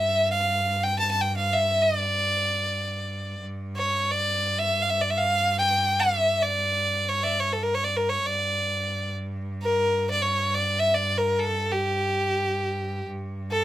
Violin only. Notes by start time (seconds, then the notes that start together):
Already playing: E5
0.31 F5
0.83 G5
0.99 A5
1.11 A5
1.21 G5
1.37 F5
1.53 E5
1.81 D5
3.77 C#5
4.11 D5
4.59 E5
4.82 F5
4.90 E5
5.01 D5
5.10 E5
5.18 F5
5.59 G5
6.00 E5
6.42 D5
7.09 C#5
7.23 D5 E5
7.40 C#5
7.53 A4
7.63 A#4
7.75 C#5
7.84 D5
7.97 A#4
8.10 C#5
8.26 D5
9.63 A#4
10.11 D5
10.22 C#5
10.55 D5
10.79 E5
10.94 D5
11.18 A#4
11.39 A4
11.72 G4
13.51 A4